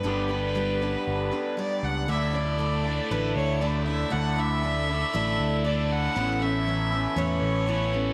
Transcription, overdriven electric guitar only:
\new Staff \with { instrumentName = "Overdriven electric guitar" } { \time 4/4 \key d \major \tempo 4 = 118 <g, d g b d' g'>1 | <d a d' e'>4. <d a d' e'>4. <d a d' e'>4 | <d a d' e'>4. <d a d' e'>4. <d a d' e'>4 | <a, e a cis' e'>4. <a, e a cis' e'>4. <a, e a cis' e'>4 | }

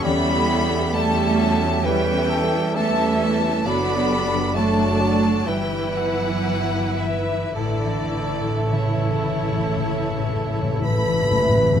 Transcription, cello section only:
\new Staff \with { instrumentName = "Cello section" } { \clef bass \time 4/4 \key a \mixolydian \tempo 4 = 63 b4 a4 g4 a8 a8 | b4 a4 g8 fis4 e8 | d4 cis2~ cis8 r8 | }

